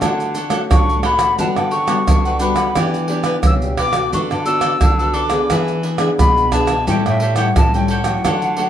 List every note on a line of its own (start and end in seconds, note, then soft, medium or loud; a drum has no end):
0.01 0.67 D3 medium
0.01 0.34 A3 medium
0.01 0.34 C#4 medium
0.01 0.34 D4 medium
0.01 0.34 F#4 medium
0.01 0.34 A4 medium
0.01 0.35 C#5 medium
0.01 0.36 F#5 medium
0.01 pandeiro medium
0.01 tamborim medium
0.01 maracas medium
0.01 surdo medium
0.20 pandeiro soft
0.20 maracas soft
0.35 0.49 D4 soft
0.35 0.50 A4 soft
0.35 0.50 C#5 soft
0.35 0.50 F#5 soft
0.35 pandeiro medium
0.35 maracas medium
0.49 0.97 A3 medium
0.49 0.98 C#4 medium
0.49 0.61 D4 medium
0.49 0.98 F#4 medium
0.49 0.61 A4 medium
0.49 0.61 C#5 medium
0.49 0.61 F#5 medium
0.49 pandeiro medium
0.49 tamborim medium
0.49 maracas medium
0.70 1.35 A2 medium
0.70 1.00 D3 medium
0.70 1.03 C#6 medium
0.70 pandeiro medium
0.70 tamborim medium
0.70 maracas medium
0.70 surdo loud
0.89 pandeiro soft
0.89 maracas soft
1.02 1.32 A3 medium
1.02 1.33 C#4 soft
1.02 1.20 D4 medium
1.02 1.33 F#4 medium
1.02 1.19 A4 medium
1.02 1.18 C#5 medium
1.02 1.17 F#5 medium
1.02 1.37 B5 medium
1.02 pandeiro medium
1.02 tamborim medium
1.18 1.37 A4 soft
1.18 1.36 C#5 soft
1.18 1.36 F#5 soft
1.18 pandeiro medium
1.18 tamborim medium
1.18 maracas medium
1.38 2.04 D3 medium
1.38 1.71 G3 soft
1.38 1.71 B3 soft
1.38 1.55 D4 medium
1.38 1.72 F#4 medium
1.38 1.55 G4 medium
1.38 1.55 B4 medium
1.38 1.55 F#5 medium
1.38 1.47 A5 medium
1.38 pandeiro medium
1.38 maracas medium
1.38 surdo medium
1.56 2.01 D3 medium
1.56 1.70 G4 soft
1.56 1.71 B4 soft
1.56 1.71 F#5 soft
1.56 pandeiro soft
1.56 tamborim medium
1.56 maracas soft
1.71 1.86 D4 soft
1.71 1.86 G4 soft
1.71 1.86 B4 soft
1.71 1.87 F#5 soft
1.71 2.37 C#6 medium
1.71 pandeiro medium
1.87 2.35 G3 soft
1.87 2.35 B3 medium
1.87 1.98 D4 medium
1.87 2.35 F#4 medium
1.87 1.98 G4 medium
1.87 1.98 B4 medium
1.87 1.98 F#5 medium
1.87 pandeiro medium
1.87 tamborim medium
1.87 maracas medium
2.07 2.73 D3 soft
2.07 pandeiro medium
2.07 tamborim medium
2.07 maracas medium
2.07 surdo loud
2.25 2.39 G4 soft
2.25 2.40 B4 soft
2.25 2.41 F#5 soft
2.25 pandeiro soft
2.25 maracas soft
2.39 2.70 G3 soft
2.39 2.70 B3 soft
2.39 2.57 D4 medium
2.39 2.70 F#4 medium
2.39 2.57 G4 medium
2.39 2.56 B4 medium
2.39 2.55 F#5 medium
2.39 2.73 B5 medium
2.39 pandeiro medium
2.39 maracas medium
2.56 2.75 G4 soft
2.56 2.74 B4 soft
2.56 2.73 F#5 soft
2.56 pandeiro medium
2.56 tamborim medium
2.56 maracas medium
2.75 3.42 E3 medium
2.75 3.05 B3 medium
2.75 3.06 D4 medium
2.75 3.08 E4 medium
2.75 3.09 G4 medium
2.75 3.05 G4 medium
2.75 3.10 B4 medium
2.75 3.10 D5 medium
2.75 pandeiro medium
2.75 tamborim medium
2.75 maracas medium
2.75 surdo medium
2.94 pandeiro soft
2.94 maracas soft
3.08 3.56 B3 medium
3.08 3.56 D4 soft
3.08 3.23 E4 soft
3.08 3.56 G4 medium
3.08 3.24 G4 soft
3.08 3.24 B4 soft
3.08 3.25 D5 medium
3.08 pandeiro medium
3.24 3.35 E4 medium
3.24 3.35 G4 medium
3.24 3.36 B4 medium
3.24 3.36 D5 medium
3.24 pandeiro medium
3.24 tamborim medium
3.24 maracas medium
3.43 4.10 B2 medium
3.43 3.74 C#3 medium
3.43 3.54 E6 medium
3.43 pandeiro medium
3.43 tamborim medium
3.43 maracas medium
3.43 surdo loud
3.62 3.91 B3 medium
3.62 3.92 D4 medium
3.62 3.92 G4 medium
3.62 pandeiro soft
3.62 maracas soft
3.77 3.94 E4 medium
3.77 3.94 G4 medium
3.77 3.92 B4 medium
3.77 3.92 D5 medium
3.77 4.11 D6 medium
3.77 pandeiro medium
3.77 tamborim medium
3.77 surdo medium
3.93 4.41 B3 medium
3.93 4.41 F#4 medium
3.93 4.11 G4 soft
3.93 4.41 A4 medium
3.93 4.11 B4 soft
3.93 4.10 D5 soft
3.93 pandeiro medium
3.93 tamborim medium
3.93 maracas medium
4.12 4.78 D3 medium
4.12 4.29 D4 medium
4.12 4.29 A4 medium
4.12 4.30 B4 medium
4.12 4.29 D5 medium
4.12 4.22 C#6 medium
4.12 pandeiro medium
4.12 maracas medium
4.12 surdo medium
4.30 4.75 D3 medium
4.30 4.45 A4 soft
4.30 4.46 B4 soft
4.30 4.46 D5 soft
4.30 pandeiro soft
4.30 tamborim medium
4.30 maracas soft
4.45 4.79 B3 soft
4.45 4.60 D4 soft
4.45 4.79 F#4 medium
4.45 4.60 A4 soft
4.45 4.79 A4 medium
4.45 4.61 B4 medium
4.45 4.61 D5 medium
4.45 5.15 E6 medium
4.45 pandeiro medium
4.45 maracas medium
4.61 4.72 D4 medium
4.61 4.72 A4 medium
4.61 4.73 B4 medium
4.61 4.73 D5 medium
4.61 pandeiro medium
4.61 tamborim medium
4.61 maracas medium
4.81 5.47 D3 medium
4.81 pandeiro medium
4.81 tamborim medium
4.81 maracas medium
4.81 surdo loud
4.99 5.29 B3 medium
4.99 5.29 F#4 medium
4.99 5.29 A4 medium
4.99 5.13 A4 soft
4.99 5.14 B4 soft
4.99 5.15 D5 soft
4.99 pandeiro soft
4.99 maracas soft
5.13 5.31 D4 medium
5.13 5.31 A4 medium
5.13 5.29 B4 medium
5.13 5.28 D5 medium
5.13 5.50 D6 medium
5.13 pandeiro medium
5.29 5.78 B3 medium
5.29 5.78 D4 medium
5.29 5.78 G#4 medium
5.29 5.49 A4 soft
5.29 5.48 B4 soft
5.29 5.47 D5 medium
5.29 pandeiro medium
5.29 tamborim medium
5.29 maracas medium
5.49 6.15 E3 medium
5.49 5.82 D4 medium
5.49 5.83 G#4 medium
5.49 5.83 B4 medium
5.49 5.84 E5 medium
5.49 pandeiro medium
5.49 tamborim medium
5.49 maracas medium
5.49 surdo medium
5.68 pandeiro soft
5.68 maracas soft
5.83 5.97 D4 soft
5.83 5.98 G#4 soft
5.83 5.99 B4 soft
5.83 5.99 E5 soft
5.83 pandeiro medium
5.98 6.46 B3 medium
5.98 6.09 D4 medium
5.98 6.47 D4 medium
5.98 6.47 G#4 medium
5.98 6.10 G#4 medium
5.98 6.10 B4 medium
5.98 6.10 E5 medium
5.98 pandeiro medium
5.98 tamborim medium
5.98 maracas medium
6.18 6.84 B2 medium
6.18 6.55 B5 loud
6.18 pandeiro medium
6.18 tamborim medium
6.18 maracas medium
6.18 surdo loud
6.37 pandeiro soft
6.37 maracas soft
6.51 6.73 B3 medium
6.51 6.69 D4 medium
6.51 6.73 D4 medium
6.51 6.73 G#4 medium
6.51 6.69 G#4 medium
6.51 6.68 B4 medium
6.51 6.67 E5 medium
6.51 6.88 A5 medium
6.51 pandeiro medium
6.51 tamborim medium
6.51 maracas medium
6.51 surdo medium
6.67 6.86 G#4 soft
6.67 6.86 B4 soft
6.67 6.85 E5 soft
6.67 pandeiro medium
6.67 tamborim medium
6.67 maracas medium
6.87 7.53 A2 medium
6.87 7.20 G3 medium
6.87 7.20 C#4 medium
6.87 7.20 E4 medium
6.87 7.03 G4 medium
6.87 7.04 A4 medium
6.87 7.05 C#5 medium
6.87 6.95 G5 medium
6.87 7.05 G5 medium
6.87 pandeiro medium
6.87 maracas medium
6.87 surdo medium
7.06 7.50 A2 medium
7.06 7.21 A4 soft
7.06 7.22 C#5 soft
7.06 7.37 E5 medium
7.06 7.22 G5 soft
7.06 pandeiro soft
7.06 tamborim medium
7.06 maracas soft
7.20 7.36 G4 soft
7.20 7.36 A4 soft
7.20 7.37 C#5 soft
7.20 7.37 G5 soft
7.20 pandeiro medium
7.36 7.67 G3 soft
7.36 7.67 C#4 medium
7.36 7.67 E4 medium
7.36 7.47 G4 medium
7.36 7.47 A4 medium
7.36 7.48 C#5 medium
7.36 7.54 F#5 medium
7.36 7.48 G5 medium
7.36 pandeiro medium
7.36 tamborim medium
7.36 maracas medium
7.56 8.15 A2 medium
7.56 8.22 E3 medium
7.56 7.73 A5 medium
7.56 pandeiro medium
7.56 tamborim medium
7.56 maracas medium
7.56 surdo loud
7.74 8.03 G3 medium
7.74 8.03 C#4 medium
7.74 8.03 E4 medium
7.74 7.89 A4 soft
7.74 7.89 C#5 soft
7.74 7.90 G5 soft
7.74 7.90 G5 medium
7.74 pandeiro soft
7.74 maracas soft
7.88 8.06 G4 medium
7.88 8.07 A4 medium
7.88 8.05 C#5 medium
7.88 8.70 F#5 medium
7.88 8.04 G5 medium
7.88 pandeiro medium
8.04 8.57 F#3 medium
8.04 8.57 A3 medium
8.04 8.58 C#4 medium
8.04 8.24 A4 soft
8.04 8.23 C#5 soft
8.04 8.23 G5 soft
8.04 pandeiro medium
8.04 tamborim medium
8.04 maracas medium
8.24 8.70 D3 medium
8.24 8.55 D4 medium
8.24 8.56 A4 medium
8.24 8.57 C#5 medium
8.24 8.58 F#5 medium
8.24 pandeiro medium
8.24 tamborim medium
8.24 maracas medium
8.24 surdo medium
8.42 pandeiro soft
8.42 maracas soft
8.57 8.70 F#3 medium
8.57 8.70 A3 medium
8.57 8.70 C#4 medium
8.57 8.70 D4 soft
8.57 8.70 A4 medium
8.57 8.70 C#5 soft
8.57 8.70 F#5 soft
8.57 pandeiro medium